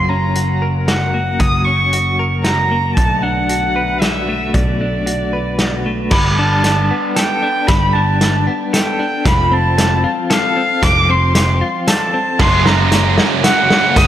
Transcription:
Already playing: picked electric bass F#1, pedal steel guitar C#3 F#3 A#3 F#4, clean electric guitar F#3, violin C6
0.09 clean electric guitar C#4, violin A#5
0.35 clean electric guitar F#4, closed hi-hat
0.62 clean electric guitar A#4
0.88 clean electric guitar F#4, violin F#5, snare, closed hi-hat
1.14 clean electric guitar A#3
1.39 picked electric bass F#1, clean electric guitar F#3, violin D#6, kick, closed hi-hat
1.64 clean electric guitar C#4, violin C#6
1.93 clean electric guitar F#4, closed hi-hat
2.19 clean electric guitar A#4
2.44 clean electric guitar F#4, violin A#5, snare, closed hi-hat
2.71 clean electric guitar A#3
2.95 picked electric bass B1, clean electric guitar B2, pedal steel guitar D3 A3 B3, violin A5, kick, closed hi-hat
3.22 clean electric guitar D4, violin F#5
3.49 clean electric guitar F#4, closed hi-hat
3.76 clean electric guitar B4
4.00 clean electric guitar F#4, violin E5, snare, closed hi-hat
4.29 clean electric guitar A3
4.53 picked electric bass B1, clean electric guitar B2, violin D5, kick, closed hi-hat
4.81 clean electric guitar D4
5.06 clean electric guitar F#4, closed hi-hat
5.33 clean electric guitar B4
5.59 clean electric guitar F#4, snare, closed hi-hat
5.86 clean electric guitar A3
6.11 picked electric bass G1, clean electric guitar G3, pedal steel guitar B3 G4 A4 D5, violin B5, kick, snare, crash
6.38 clean electric guitar D4, violin A5
6.64 clean electric guitar D4, snare, closed hi-hat
6.91 clean electric guitar B3
7.16 clean electric guitar A4, violin G5, snare, closed hi-hat
7.43 clean electric guitar D4
7.67 picked electric bass G1, clean electric guitar G3, violin B5, kick, snare, closed hi-hat
7.93 clean electric guitar D4, violin A5
8.21 clean electric guitar D4, snare, closed hi-hat
8.47 clean electric guitar B3
8.73 clean electric guitar A4, violin G5, snare, closed hi-hat
8.99 clean electric guitar D4
9.25 picked electric bass F1, clean electric guitar F3, pedal steel guitar C4 F4 F5, violin B5, kick, snare, closed hi-hat
9.52 clean electric guitar C4, violin A5
9.78 clean electric guitar C4, snare, closed hi-hat
10.04 clean electric guitar F4
10.30 clean electric guitar A4, violin F5, snare, closed hi-hat
10.57 clean electric guitar C4
10.82 picked electric bass F1, clean electric guitar F3, violin D6, kick, snare, closed hi-hat
11.09 clean electric guitar C4, violin C6
11.35 clean electric guitar C4, snare, closed hi-hat
11.61 clean electric guitar F4
11.88 clean electric guitar A4, violin A5, snare, closed hi-hat
12.14 clean electric guitar C4
12.39 picked electric bass F#1, clean electric guitar F#2, distorted electric guitar F#2 C#3, pedal steel guitar C#4 F#4 A#4 F#5, violin C6, kick, snare, crash
12.48 distorted electric guitar F#2 C#3
12.56 distorted electric guitar F#2 C#3
12.63 distorted electric guitar F#2 C#3, clean electric guitar C#3, violin A#5, snare
12.70 distorted electric guitar F#2 C#3
12.78 distorted electric guitar F#2 C#3
12.86 distorted electric guitar F#2 C#3
12.92 distorted electric guitar F#2 C#3, clean electric guitar A#3, snare, closed hi-hat
13.01 distorted electric guitar F#2 C#3
13.09 distorted electric guitar F#2 C#3
13.17 distorted electric guitar F#2 C#3, clean electric guitar C#4, snare
13.25 distorted electric guitar F#2 C#3
13.33 distorted electric guitar F#2 C#3
13.41 distorted electric guitar F#2 C#3, clean electric guitar F#4, violin F#5, snare, closed hi-hat
13.49 distorted electric guitar F#2 C#3
13.56 distorted electric guitar F#2 C#3
13.64 distorted electric guitar F#2 C#3
13.70 distorted electric guitar F#2 C#3, clean electric guitar A#3, snare
13.80 distorted electric guitar F#2 C#3
13.87 distorted electric guitar F#2 C#3
13.96 picked electric bass F#1, distorted electric guitar F#2 C#3, clean electric guitar F#2, violin D#6, kick, snare, closed hi-hat
14.04 distorted electric guitar F#2

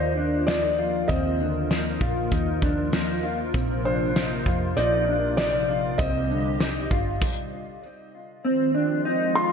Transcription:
Already playing: fingered electric bass D#2, analog synth pad F3 A#3 F4 A#4, clean electric guitar D#4, felt piano C5
0.17 clean electric guitar D4
0.47 clean electric guitar D#4, felt piano D5, snare, closed hi-hat
0.79 clean electric guitar F4
1.08 fingered electric bass D#2, clean electric guitar C4, felt piano D#5, kick, closed hi-hat
1.40 clean electric guitar D3
1.71 clean electric guitar D#4, snare, closed hi-hat
2.01 fingered electric bass A#1, clean electric guitar F4, kick
2.32 fingered electric bass D#2, clean electric guitar D#4, kick, closed hi-hat
2.62 clean electric guitar D4, kick
2.93 clean electric guitar D#4, snare, closed hi-hat
3.23 clean electric guitar F4
3.54 fingered electric bass A#1, analog synth pad C3, clean electric guitar C4, kick, closed hi-hat
3.84 clean electric guitar D4, felt piano C5
4.15 clean electric guitar D#4, snare, closed hi-hat
4.46 fingered electric bass F2, clean electric guitar F4, kick
4.77 fingered electric bass A#1, clean electric guitar D#4, felt piano D5, closed hi-hat
5.08 clean electric guitar D4
5.37 clean electric guitar D#4, felt piano D5, snare, closed hi-hat
5.69 clean electric guitar F4
5.98 fingered electric bass C2, analog synth pad G3 G4 D#5, clean electric guitar C4, felt piano D#5, kick, closed hi-hat
6.30 clean electric guitar D3
6.60 clean electric guitar D#4, snare, closed hi-hat
6.91 fingered electric bass G1, clean electric guitar F4, kick
7.22 kick, crash
8.45 analog synth pad D#3 F3 G#3 C4 F4, clean electric guitar C4
8.74 clean electric guitar D4
9.05 clean electric guitar D#4
9.35 clean electric guitar F4, felt piano C6

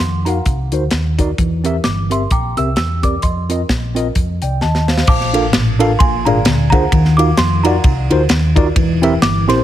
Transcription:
Already playing: tine electric piano D#3, celesta F5 F#5 C6
0.00 fingered electric bass F2, closed hi-hat
0.25 tine electric piano D#4 F#4 A#4 F5, celesta F5 F#5 A#5, closed hi-hat
0.46 fingered electric bass C2, kick, closed hi-hat
0.72 fingered electric bass D2, tine electric piano D#4 F#4 A#4 C5, closed hi-hat
0.91 fingered electric bass D#2, snare, closed hi-hat
1.18 tine electric piano D#4 F#4 A#4 D5, kick, closed hi-hat
1.38 fingered electric bass E2, tine electric piano E3, kick, closed hi-hat
1.64 tine electric piano C4 G4 A#4 E5, closed hi-hat
1.84 fingered electric bass G1, celesta D6, snare, closed hi-hat
2.10 tine electric piano C4 G4 A#4 E5, celesta C6, closed hi-hat
2.31 fingered electric bass A#1, celesta G5 A#5 D6, kick, closed hi-hat
2.57 fingered electric bass C2, tine electric piano C4 G4 A#4 E5, celesta E6, closed hi-hat
2.76 fingered electric bass E2, celesta E6, snare, closed hi-hat
3.03 tine electric piano C4 G4 A#4 D5, celesta D6, kick, closed hi-hat
3.22 fingered electric bass F2, celesta D#5 C6, kick, closed hi-hat
3.49 tine electric piano C4 F4 A#4 D#5, closed hi-hat
3.69 fingered electric bass A#1, kick, snare, closed hi-hat
3.95 tine electric piano C4 F4 A#4 D#5, closed hi-hat
4.15 fingered electric bass F2, kick, closed hi-hat
4.42 fingered electric bass C2, tine electric piano D5 G5, closed hi-hat
4.61 fingered electric bass D#2, tine electric piano D#5 A5, snare
4.75 snare
4.88 tine electric piano C5 F5, snare
4.98 snare
5.07 fingered electric bass A#1, tine electric piano A#2, celesta F5 A5 D6, kick, crash
5.21 snare
5.33 tine electric piano D4 F4 A4 A#4 F5, ride bell
5.53 fingered electric bass A1, snare, ride bell
5.79 tine electric piano D4 F4 A4 A#4 F5, ride bell
5.99 fingered electric bass A#1, tine electric piano A#2, celesta F5 G#5 C6, kick, ride bell
6.25 fingered electric bass G#1, tine electric piano D4 F4 G#4 A#4 F5, celesta D5 F5 A#5, ride bell
6.45 fingered electric bass D2, snare, ride bell
6.70 tine electric piano D4 F4 G#4 A#4, celesta F5 F#5 A#5, kick, ride bell
6.74 tine electric piano C5
6.92 fingered electric bass D#2, tine electric piano D#3, kick, ride bell
7.05 snare
7.17 tine electric piano D#4 F4 F#4 A#4 F5, celesta D6, ride bell
7.37 fingered electric bass F2, celesta C6, snare, ride bell
7.63 tine electric piano D#4 F4 F#4 A#4 D5, celesta F5 F#5 A#5, ride bell
7.84 fingered electric bass C2, kick, ride bell
8.10 fingered electric bass D2, tine electric piano D#4 F4 F#4 A#4 C5, ride bell
8.29 fingered electric bass D#2, snare, ride bell
8.56 tine electric piano D#4 F4 F#4 A#4 D5, kick, ride bell
8.76 fingered electric bass E1, tine electric piano E3, kick, ride bell
9.02 tine electric piano C4 E4 G4 A#4 E5, ride bell
9.22 fingered electric bass G1, celesta D6, snare, ride bell
9.48 fingered electric bass A#1, tine electric piano C4 E4 G4 A#4 C5, celesta C6, snare, ride bell

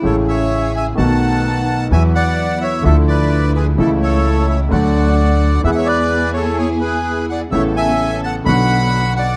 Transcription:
0.02 grand piano A1 A2 C#3 G#3 A3 E4, upright bass A1, string section C#4 G#4
0.06 bandoneon A4 C#5
0.28 bandoneon C#5 E5
0.75 bandoneon E5 G#5
0.95 grand piano B1 B2 D#3 A3 B3 F#4, upright bass B1, string section A3 B3 D#4, bandoneon F#5 A5
1.91 upright bass E2, grand piano E2 E3 F#3 B3 F#4, string section F#3 B3 E4, bandoneon E5 G#5
2.15 bandoneon D5 F#5
2.61 bandoneon C#5 E5
2.82 grand piano D2 D3 F3 A3 E4, upright bass D2, string section F3 D4, bandoneon E5
2.86 string section E4, bandoneon A4
3.08 bandoneon B4 D5
3.54 bandoneon G#4 B4
3.76 grand piano C#2 C#3 E3 A3 E4, upright bass C#2, string section A3 C#4 E4, bandoneon A4
3.81 bandoneon E4
4.02 bandoneon A4 C#5
4.48 bandoneon C#5 E5
4.71 grand piano D2 D3 F#3 A3 F#4, upright bass D2, string section A3 D4 F#4, bandoneon D5 F#5
5.63 upright bass E2, grand piano E2 E3 G#3 B3, string section B3 E4 G#4, bandoneon E5
5.67 grand piano G#4, bandoneon B4
5.72 bandoneon E5 F#5
5.78 bandoneon C#5
5.86 bandoneon B4 D5
6.34 bandoneon A4 C#5
6.58 bandoneon G#4 C#5
6.81 bandoneon G#4 B4
7.30 bandoneon D5 F#5
7.50 upright bass A1, grand piano A1 A2 C#3 A3 B3, string section B3 C#4 A4, bandoneon C#5 E5
7.55 grand piano E4
7.76 bandoneon E5 G#5
8.24 bandoneon F#5 A5
8.44 grand piano B1 B2 D3 F#3 B3 F#4, upright bass B1, string section B3 D4 F#4, bandoneon F#5 B5
9.16 bandoneon D5 F#5

